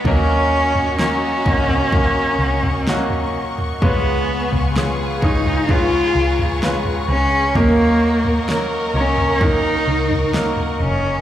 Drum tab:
SD |----o-------o---|----o-------o---|----o-------o---|
FT |o--o---oo--o-o-o|o--o---oo--o-o--|o--o---oo--o-o--|
BD |o-----o-o-------|o-----o-o-------|o-------o-------|